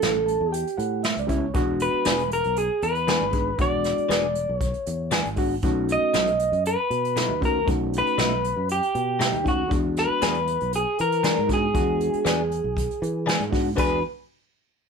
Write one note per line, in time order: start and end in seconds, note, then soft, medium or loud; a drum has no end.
0.00 0.37 A1 medium
0.00 0.14 G3 medium
0.00 0.14 B3 medium
0.00 0.15 C#4 medium
0.00 0.15 E4 medium
0.00 0.52 A4 medium
0.00 snare loud
0.00 closed hi-hat medium
0.26 0.50 A5 medium
0.26 closed hi-hat medium
0.41 0.63 E2 medium
0.52 1.01 G4 medium
0.52 0.76 G5 medium
0.52 closed hi-hat medium
0.67 closed hi-hat soft
0.78 1.13 A2 loud
0.78 1.01 F#5 medium
0.78 closed hi-hat medium
1.03 1.19 E5 medium
1.03 snare loud
1.03 closed hi-hat medium
1.17 1.51 C#2 medium
1.17 1.36 D5 medium
1.17 closed hi-hat soft
1.27 1.44 G3 medium
1.27 1.45 B3 medium
1.27 1.45 C#4 medium
1.27 1.46 E4 loud
1.27 kick medium
1.27 closed hi-hat medium
1.37 1.53 C#5 medium
1.54 1.89 E1 medium
1.54 2.19 G#3 medium
1.54 2.19 B3 medium
1.54 2.20 D4 medium
1.54 2.20 F#4 loud
1.54 kick loud
1.54 closed hi-hat medium
1.80 2.33 B4 medium
1.80 closed hi-hat medium
1.94 muted fingered electric bass stroke soft
2.05 2.41 E1 loud
2.05 2.21 E3 medium
2.05 2.22 B3 medium
2.05 2.22 D4 medium
2.05 2.22 G#4 medium
2.05 snare loud
2.05 closed hi-hat medium
2.18 closed hi-hat soft
2.31 2.56 A#4 loud
2.31 closed hi-hat medium
2.44 2.68 B1 medium
2.44 closed hi-hat soft
2.57 2.81 G#4 medium
2.57 closed hi-hat medium
2.82 3.17 E2 loud
2.82 3.61 B4 loud
2.82 closed hi-hat medium
2.95 closed hi-hat soft
3.07 3.23 E3 medium
3.07 3.24 B3 medium
3.07 3.24 D4 medium
3.07 3.24 G#4 medium
3.07 snare loud
3.07 closed hi-hat medium
3.21 3.55 G#1 medium
3.32 3.49 G#3 medium
3.32 3.49 B3 medium
3.32 3.49 D4 medium
3.32 3.50 G#4 medium
3.32 kick medium
3.32 closed hi-hat medium
3.58 3.93 E1 medium
3.58 4.23 G#3 medium
3.58 4.24 B3 medium
3.58 4.24 D4 medium
3.58 4.24 F#4 medium
3.58 4.57 D5 loud
3.58 kick loud
3.58 closed hi-hat medium
3.84 snare soft
3.84 closed hi-hat medium
3.98 muted fingered electric bass stroke soft
3.98 closed hi-hat soft
4.09 4.44 E1 medium
4.09 4.25 E3 medium
4.09 4.25 B3 medium
4.09 4.26 D4 medium
4.09 4.26 G#4 medium
4.09 snare loud
4.09 closed hi-hat medium
4.35 closed hi-hat medium
4.49 4.72 B1 medium
4.57 5.09 C#5 loud
4.61 kick medium
4.61 closed hi-hat medium
4.74 closed hi-hat soft
4.86 5.21 E2 loud
4.86 closed hi-hat medium
5.11 5.27 E3 medium
5.11 5.27 B3 medium
5.11 5.28 D4 loud
5.11 5.28 G#4 loud
5.11 snare loud
5.11 closed hi-hat medium
5.25 5.59 G#1 medium
5.25 closed hi-hat soft
5.36 5.53 G#3 medium
5.36 5.54 B3 medium
5.36 5.54 D4 medium
5.36 5.54 F#4 loud
5.36 kick medium
5.36 open hi-hat medium
5.63 5.98 B1 medium
5.63 6.28 A3 medium
5.63 6.28 C#4 medium
5.63 6.28 D#4 medium
5.63 6.28 F#4 loud
5.63 kick loud
5.63 closed hi-hat medium
5.89 6.67 D#5 loud
5.89 closed hi-hat medium
6.02 muted fingered electric bass stroke soft
6.14 6.49 B1 medium
6.14 6.29 B2 medium
6.14 6.30 F#3 medium
6.14 6.30 A3 medium
6.14 6.30 D#4 medium
6.14 snare loud
6.14 closed hi-hat loud
6.27 closed hi-hat soft
6.39 closed hi-hat medium
6.52 6.75 F#2 medium
6.52 closed hi-hat soft
6.65 7.45 B4 medium
6.65 closed hi-hat medium
6.90 7.25 B2 loud
6.90 closed hi-hat medium
7.05 closed hi-hat soft
7.16 7.32 B2 medium
7.16 7.32 F#3 medium
7.16 7.32 A3 loud
7.16 7.32 D#4 medium
7.16 snare loud
7.16 closed hi-hat medium
7.29 7.63 D#2 medium
7.41 7.58 A3 medium
7.41 7.58 C#4 medium
7.41 7.58 D#4 medium
7.41 7.58 F#4 medium
7.41 kick medium
7.41 closed hi-hat medium
7.45 7.67 A#4 medium
7.65 8.02 B1 medium
7.65 8.31 A3 medium
7.65 8.31 C#4 medium
7.65 8.32 D#4 medium
7.65 8.32 F#4 medium
7.65 kick loud
7.65 closed hi-hat medium
7.93 closed hi-hat medium
7.98 8.71 B4 loud
8.07 closed hi-hat soft
8.18 8.52 B1 medium
8.18 8.34 B2 medium
8.18 8.34 F#3 medium
8.18 8.34 A3 medium
8.18 8.34 D#4 medium
8.18 snare loud
8.18 closed hi-hat medium
8.44 closed hi-hat medium
8.57 8.79 F#2 medium
8.69 9.48 G4 medium
8.69 closed hi-hat medium
8.83 closed hi-hat soft
8.95 9.29 B2 loud
8.95 closed hi-hat medium
9.19 9.35 B2 medium
9.19 9.35 F#3 medium
9.19 9.36 A3 medium
9.19 9.36 D#4 medium
9.19 snare loud
9.19 closed hi-hat medium
9.33 9.67 D#2 medium
9.33 closed hi-hat soft
9.44 9.61 A3 medium
9.44 9.61 C#4 medium
9.44 9.61 D#4 medium
9.44 9.62 F#4 medium
9.44 kick medium
9.44 closed hi-hat medium
9.48 9.71 F#4 medium
9.68 10.06 E2 medium
9.68 10.34 G#3 medium
9.68 10.35 B3 medium
9.68 10.35 D4 medium
9.68 10.35 F#4 medium
9.68 kick loud
9.68 closed hi-hat medium
9.96 10.75 B4 loud
9.96 snare soft
9.96 closed hi-hat medium
10.10 muted fingered electric bass stroke soft
10.22 10.56 E2 medium
10.22 10.37 E3 medium
10.22 10.38 B3 medium
10.22 10.38 D4 medium
10.22 10.38 G#4 medium
10.22 snare loud
10.22 closed hi-hat medium
10.35 closed hi-hat soft
10.47 closed hi-hat medium
10.60 10.84 B1 medium
10.60 closed hi-hat soft
10.73 10.98 G#4 loud
10.73 closed hi-hat medium
10.99 11.33 E3 loud
10.99 11.52 A#4 loud
10.99 closed hi-hat medium
11.12 closed hi-hat soft
11.23 11.39 E3 medium
11.23 11.39 B3 medium
11.23 11.39 D4 medium
11.23 11.39 G#4 medium
11.23 snare loud
11.23 closed hi-hat loud
11.38 11.71 G#2 medium
11.47 11.64 G#3 medium
11.47 11.65 B3 medium
11.47 11.65 D4 medium
11.47 11.66 F#4 medium
11.47 kick medium
11.47 snare soft
11.47 closed hi-hat medium
11.53 13.51 G#4 medium
11.74 12.09 E2 medium
11.74 12.39 G#3 medium
11.74 12.39 B3 medium
11.74 12.39 D4 medium
11.74 12.39 F#4 medium
11.74 kick medium
11.74 closed hi-hat medium
12.00 closed hi-hat medium
12.13 muted fingered electric bass stroke soft
12.13 closed hi-hat soft
12.25 12.60 E2 medium
12.25 12.41 E3 medium
12.25 12.41 B3 medium
12.25 12.41 D4 medium
12.25 12.41 G#4 medium
12.25 snare loud
12.25 closed hi-hat medium
12.51 closed hi-hat medium
12.64 12.87 B1 medium
12.77 kick medium
12.77 closed hi-hat medium
12.90 closed hi-hat soft
13.02 13.36 E3 loud
13.02 closed hi-hat medium
13.26 13.42 E3 medium
13.26 13.42 B3 medium
13.26 13.42 D4 medium
13.26 13.43 G#4 loud
13.26 snare loud
13.26 closed hi-hat medium
13.40 13.74 G#2 medium
13.40 closed hi-hat soft
13.50 13.67 G#3 medium
13.50 13.68 B3 medium
13.50 13.68 D4 medium
13.50 13.69 F#4 medium
13.50 kick medium
13.50 snare soft
13.50 open hi-hat medium
13.75 14.01 E2 medium
13.75 13.98 E3 medium
13.75 14.00 G#3 medium
13.75 14.00 B3 medium
13.75 13.98 B3 medium
13.75 14.00 D4 medium
13.75 13.98 D4 medium
13.75 14.00 F#4 medium
13.75 13.99 G#4 medium
13.75 kick medium
13.75 splash medium
13.79 14.02 B4 medium